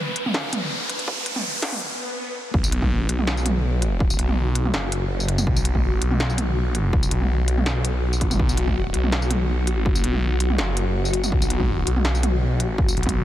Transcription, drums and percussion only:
0.16 closed hi-hat medium
0.26 mid tom medium
0.34 snare loud
0.53 closed hi-hat medium
0.53 mid tom medium
0.90 closed hi-hat medium
0.99 closed hi-hat soft
1.08 kick loud
1.26 closed hi-hat medium
1.36 mid tom medium
1.62 snare medium
1.62 closed hi-hat medium
1.72 mid tom medium
2.54 kick loud
2.64 tambourine medium
2.72 closed hi-hat medium
2.82 kick medium
2.82 mid tom medium
3.09 closed hi-hat medium
3.19 mid tom medium
3.27 snare loud
3.37 tambourine soft
3.46 closed hi-hat medium
3.46 mid tom medium
3.82 closed hi-hat medium
4.00 kick loud
4.10 tambourine medium
4.19 closed hi-hat medium
4.29 mid tom medium
4.55 closed hi-hat medium
4.65 mid tom medium
4.74 snare loud
4.92 closed hi-hat medium
5.20 tambourine soft
5.28 closed hi-hat medium
5.38 mid tom medium
5.38 tambourine medium
5.47 kick loud
5.56 tambourine medium
5.65 closed hi-hat medium
5.75 kick medium
5.75 mid tom medium
6.02 closed hi-hat medium
6.11 mid tom medium
6.20 snare loud
6.30 tambourine soft
6.38 closed hi-hat medium
6.38 mid tom medium
6.75 closed hi-hat medium
6.93 kick loud
7.03 tambourine medium
7.11 closed hi-hat medium
7.21 mid tom medium
7.48 closed hi-hat medium
7.58 mid tom medium
7.66 snare loud
7.85 closed hi-hat medium
8.13 tambourine soft
8.21 kick medium
8.21 closed hi-hat medium
8.31 mid tom medium
8.31 tambourine medium
8.39 kick loud
8.49 tambourine medium
8.57 closed hi-hat medium
8.67 kick medium
8.67 mid tom medium
8.94 closed hi-hat medium
9.04 mid tom medium
9.12 snare loud
9.22 tambourine soft
9.31 closed hi-hat medium
9.31 mid tom medium
9.67 closed hi-hat medium
9.86 kick loud
9.95 tambourine medium
10.04 closed hi-hat medium
10.14 mid tom medium
10.40 closed hi-hat medium
10.50 mid tom medium
10.58 snare loud
10.77 closed hi-hat medium
11.05 tambourine soft
11.13 closed hi-hat medium
11.23 mid tom medium
11.23 tambourine medium
11.32 kick loud
11.42 tambourine medium
11.50 closed hi-hat medium
11.60 kick medium
11.60 mid tom medium
11.87 closed hi-hat medium
11.97 mid tom medium
12.05 snare loud
12.15 tambourine soft
12.23 closed hi-hat medium
12.23 mid tom medium
12.60 closed hi-hat medium
12.78 kick loud
12.88 tambourine medium
12.97 closed hi-hat soft
13.03 kick medium
13.03 closed hi-hat medium
13.03 mid tom medium
13.09 closed hi-hat medium

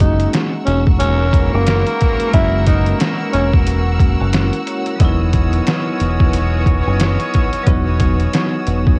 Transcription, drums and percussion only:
0.00 kick medium
0.00 closed hi-hat medium
0.20 closed hi-hat medium
0.33 finger snap medium
0.33 snare loud
0.33 closed hi-hat medium
0.67 closed hi-hat medium
0.87 kick loud
1.00 closed hi-hat loud
1.33 kick loud
1.33 closed hi-hat medium
1.67 finger snap medium
1.67 snare loud
1.67 closed hi-hat medium
1.87 closed hi-hat medium
2.01 kick loud
2.01 closed hi-hat medium
2.20 closed hi-hat medium
2.33 kick loud
2.33 closed hi-hat loud
2.66 kick medium
2.66 closed hi-hat medium
2.86 closed hi-hat medium
3.00 finger snap medium
3.00 snare loud
3.00 closed hi-hat medium
3.33 closed hi-hat medium
3.54 kick loud
3.67 closed hi-hat loud
4.00 kick loud
4.00 closed hi-hat medium
4.33 finger snap medium
4.33 snare loud
4.33 closed hi-hat medium
4.53 closed hi-hat soft
4.67 closed hi-hat medium
4.86 closed hi-hat medium
5.00 kick loud
5.00 closed hi-hat loud
5.33 kick medium
5.33 closed hi-hat medium
5.53 closed hi-hat medium
5.67 finger snap medium
5.67 snare loud
5.67 closed hi-hat medium
6.00 closed hi-hat medium
6.20 kick loud
6.33 closed hi-hat loud
6.66 kick loud
6.66 closed hi-hat medium
7.00 finger snap medium
7.00 snare loud
7.00 closed hi-hat medium
7.20 closed hi-hat soft
7.34 kick loud
7.34 closed hi-hat medium
7.53 closed hi-hat medium
7.67 kick loud
7.67 closed hi-hat medium
8.00 kick medium
8.00 closed hi-hat medium
8.20 closed hi-hat medium
8.33 finger snap medium
8.33 snare loud
8.33 closed hi-hat medium
8.67 closed hi-hat medium
8.87 kick loud

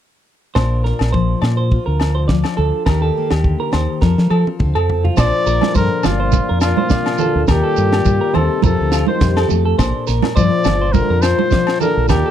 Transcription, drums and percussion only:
0.55 kick medium
0.55 snare medium
0.55 low agogo medium
0.85 snare soft
0.99 snare medium
0.99 low agogo medium
1.14 kick medium
1.42 snare medium
1.42 low agogo medium
1.72 kick medium
2.00 snare medium
2.00 low agogo medium
2.29 kick medium
2.29 snare medium
2.44 snare medium
2.44 low agogo medium
2.86 kick medium
2.86 snare medium
2.86 low agogo medium
3.31 snare medium
3.31 low agogo medium
3.44 kick medium
3.73 snare medium
3.73 low agogo medium
4.02 kick medium
4.02 snare soft
4.18 snare soft
4.30 low agogo medium
4.47 high tom soft
4.60 kick medium
4.60 mid tom medium
4.76 low agogo medium
4.90 floor tom medium
5.05 floor tom medium
5.17 kick medium
5.17 snare medium
5.17 crash medium
5.17 low agogo medium
5.17 shekere medium
5.46 shekere medium
5.61 snare medium
5.61 high conga medium
5.61 low agogo medium
5.75 kick medium
5.75 shekere medium
6.03 snare medium
6.03 low conga medium
6.03 low agogo medium
6.03 shekere medium
6.32 kick medium
6.32 high conga medium
6.32 shekere medium
6.61 snare medium
6.61 low agogo medium
6.61 shekere medium
6.77 high conga medium
6.89 kick medium
6.89 snare medium
6.89 shekere medium
7.06 snare medium
7.06 low agogo medium
7.18 low conga medium
7.18 shekere medium
7.48 kick medium
7.48 snare medium
7.48 low agogo medium
7.48 shekere medium
7.76 shekere medium
7.93 snare medium
7.93 low agogo medium
8.05 kick medium
8.05 shekere medium
8.34 low conga medium
8.34 low agogo medium
8.62 kick medium
8.62 high conga medium
8.62 shekere medium
8.92 snare medium
8.92 low agogo medium
8.92 shekere medium
9.07 high conga medium
9.21 kick medium
9.21 snare medium
9.21 shekere medium
9.37 snare medium
9.37 low agogo medium
9.48 low conga medium
9.48 shekere medium
9.79 kick medium
9.79 snare medium
9.79 low agogo medium
9.79 shekere medium
10.07 snare soft
10.07 shekere medium
10.22 snare medium
10.22 high conga medium
10.22 low agogo medium
10.37 kick medium
10.37 shekere medium
10.64 snare medium
10.64 low conga medium
10.64 low agogo medium
10.64 shekere medium
10.94 kick medium
10.94 high conga medium
10.94 shekere medium
11.22 snare medium
11.22 low agogo medium
11.22 shekere medium
11.39 high conga medium
11.51 kick medium
11.51 snare medium
11.51 shekere medium
11.67 snare medium
11.67 low agogo medium
11.81 low conga medium
11.81 shekere medium
12.08 kick medium
12.08 snare medium
12.08 low conga medium
12.08 low agogo medium
12.08 shekere medium

